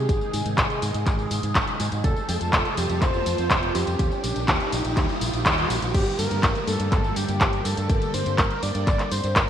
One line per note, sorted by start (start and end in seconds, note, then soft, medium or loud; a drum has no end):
0.00 3.95 C3 medium
0.00 2.00 D#3 medium
0.00 1.27 G#4 medium
0.00 riser medium
0.09 0.18 G#1 medium
0.09 2.02 G#3 medium
0.09 2.02 D#4 medium
0.09 2.02 G#4 medium
0.09 kick loud
0.09 closed hi-hat medium
0.09 tambourine soft
0.21 tambourine soft
0.33 0.43 G#2 medium
0.33 open hi-hat loud
0.33 tambourine medium
0.46 0.55 G#2 medium
0.46 closed hi-hat medium
0.46 tambourine soft
0.58 0.67 G#1 loud
0.58 kick loud
0.58 clap loud
0.58 closed hi-hat medium
0.58 tambourine soft
0.70 closed hi-hat soft
0.70 tambourine soft
0.82 0.91 G#2 medium
0.82 open hi-hat medium
0.82 tambourine medium
0.94 1.04 G#2 medium
0.94 closed hi-hat soft
0.94 tambourine soft
1.07 1.25 G#1 medium
1.07 kick loud
1.07 clap soft
1.07 closed hi-hat medium
1.07 tambourine soft
1.19 tambourine soft
1.31 1.40 G#2 medium
1.31 open hi-hat loud
1.31 tambourine medium
1.43 1.52 G#2 medium
1.43 closed hi-hat medium
1.43 tambourine soft
1.55 1.65 G#1 medium
1.55 kick loud
1.55 clap loud
1.55 closed hi-hat medium
1.55 tambourine soft
1.68 closed hi-hat soft
1.68 tambourine soft
1.80 1.89 G#2 loud
1.80 open hi-hat loud
1.80 tambourine medium
1.92 2.01 G#2 loud
1.92 closed hi-hat medium
1.92 tambourine soft
2.04 2.13 F1 medium
2.04 3.97 F3 medium
2.04 3.97 A3 medium
2.04 3.97 F4 medium
2.04 2.27 A4 loud
2.04 3.97 A4 medium
2.04 kick loud
2.04 closed hi-hat medium
2.04 tambourine soft
2.16 tambourine soft
2.28 2.38 F2 medium
2.28 2.79 A4 loud
2.28 open hi-hat loud
2.28 tambourine medium
2.41 2.50 F2 medium
2.41 closed hi-hat soft
2.41 tambourine soft
2.53 2.62 F1 loud
2.53 kick loud
2.53 clap loud
2.53 closed hi-hat medium
2.53 tambourine soft
2.65 closed hi-hat soft
2.65 tambourine soft
2.77 2.87 F2 medium
2.77 3.03 G4 loud
2.77 open hi-hat loud
2.77 tambourine medium
2.90 2.99 F2 medium
2.90 closed hi-hat medium
2.90 tambourine soft
3.01 3.20 F1 medium
3.01 3.25 C5 loud
3.01 kick loud
3.01 clap medium
3.01 closed hi-hat medium
3.01 tambourine soft
3.14 tambourine soft
3.26 3.35 F2 medium
3.26 3.76 C5 loud
3.26 open hi-hat loud
3.26 tambourine medium
3.38 3.48 F2 medium
3.38 closed hi-hat soft
3.38 tambourine soft
3.50 3.69 F1 medium
3.50 kick loud
3.50 clap loud
3.50 closed hi-hat medium
3.50 tambourine soft
3.63 closed hi-hat soft
3.63 tambourine soft
3.75 3.84 F2 medium
3.75 5.21 G4 medium
3.75 open hi-hat loud
3.75 tambourine medium
3.87 3.96 F2 medium
3.87 closed hi-hat medium
3.87 tambourine soft
3.99 4.08 D#2 loud
3.99 5.92 A#2 medium
3.99 5.92 D#3 medium
3.99 5.92 G3 medium
3.99 5.92 D#4 medium
3.99 5.92 G4 medium
3.99 kick loud
3.99 closed hi-hat medium
3.99 tambourine soft
4.11 tambourine soft
4.24 4.33 A#1 medium
4.24 open hi-hat loud
4.24 tambourine medium
4.36 4.45 A#1 medium
4.36 closed hi-hat soft
4.36 tambourine soft
4.48 4.57 D#2 loud
4.48 kick loud
4.48 clap loud
4.48 closed hi-hat medium
4.48 tambourine soft
4.60 closed hi-hat soft
4.60 tambourine soft
4.72 4.82 A#1 medium
4.72 open hi-hat loud
4.72 tambourine medium
4.85 4.94 A#1 medium
4.85 closed hi-hat medium
4.85 tambourine soft
4.97 5.06 D#2 medium
4.97 kick loud
4.97 clap soft
4.97 closed hi-hat medium
4.97 tambourine soft
5.09 tambourine soft
5.21 5.30 A#1 medium
5.21 open hi-hat loud
5.21 tambourine medium
5.33 5.43 A#1 medium
5.33 closed hi-hat medium
5.33 tambourine soft
5.46 5.64 D#2 medium
5.46 kick loud
5.46 clap loud
5.46 closed hi-hat medium
5.46 tambourine soft
5.58 closed hi-hat soft
5.58 tambourine soft
5.70 5.79 A#1 loud
5.70 open hi-hat loud
5.70 tambourine medium
5.82 5.91 A#1 loud
5.82 closed hi-hat medium
5.82 tambourine soft
5.94 6.04 G1 loud
5.94 9.50 D3 medium
5.94 9.50 G3 medium
5.94 9.50 A#3 medium
5.94 6.17 G4 medium
5.94 9.50 G4 medium
5.94 kick loud
5.94 closed hi-hat medium
5.94 crash loud
5.94 tambourine soft
5.94 downlifter medium
6.07 tambourine soft
6.19 6.28 G2 medium
6.19 6.64 A#4 loud
6.19 open hi-hat loud
6.19 tambourine medium
6.31 6.40 G2 medium
6.31 closed hi-hat medium
6.31 tambourine soft
6.43 6.52 G1 loud
6.43 kick loud
6.43 clap loud
6.43 closed hi-hat medium
6.43 tambourine soft
6.55 closed hi-hat soft
6.55 tambourine soft
6.67 6.77 G2 medium
6.67 6.90 A4 loud
6.67 open hi-hat medium
6.67 tambourine medium
6.80 6.89 G2 medium
6.80 closed hi-hat medium
6.80 tambourine soft
6.92 7.10 G1 medium
6.92 7.18 A4 loud
6.92 kick loud
6.92 clap medium
6.92 closed hi-hat medium
6.92 tambourine soft
7.04 tambourine soft
7.16 7.26 G2 medium
7.16 7.67 G4 loud
7.16 open hi-hat loud
7.16 tambourine medium
7.29 7.38 G2 medium
7.29 closed hi-hat medium
7.29 tambourine soft
7.41 7.59 G1 loud
7.41 kick loud
7.41 clap loud
7.41 closed hi-hat medium
7.41 tambourine soft
7.53 closed hi-hat soft
7.53 tambourine soft
7.65 7.74 G2 loud
7.65 8.15 A4 loud
7.65 open hi-hat medium
7.65 tambourine medium
7.77 7.87 G2 medium
7.77 closed hi-hat medium
7.77 tambourine soft
7.89 7.99 G1 loud
7.89 kick loud
7.89 closed hi-hat medium
7.89 tambourine soft
8.02 closed hi-hat soft
8.02 tambourine soft
8.14 8.23 G2 medium
8.14 8.40 C5 loud
8.14 open hi-hat loud
8.14 tambourine medium
8.26 8.35 G2 medium
8.26 closed hi-hat medium
8.26 tambourine soft
8.38 8.48 G1 loud
8.38 8.64 A#4 loud
8.38 kick loud
8.38 clap loud
8.38 closed hi-hat medium
8.38 tambourine soft
8.51 closed hi-hat soft
8.51 tambourine soft
8.63 8.72 G2 medium
8.63 9.13 D5 loud
8.63 open hi-hat medium
8.63 tambourine medium
8.75 8.84 G2 medium
8.75 closed hi-hat medium
8.75 tambourine soft
8.87 8.96 G1 medium
8.87 kick loud
8.87 clap medium
8.87 closed hi-hat medium
8.87 tambourine soft
8.99 clap soft
8.99 closed hi-hat soft
8.99 tambourine soft
9.11 9.21 G2 medium
9.11 9.37 C5 loud
9.11 open hi-hat loud
9.11 tambourine medium
9.24 9.33 G2 medium
9.24 closed hi-hat medium
9.24 tambourine soft
9.36 9.50 G1 medium
9.36 9.50 A#4 loud
9.36 kick loud
9.36 clap loud
9.36 closed hi-hat medium
9.36 tambourine soft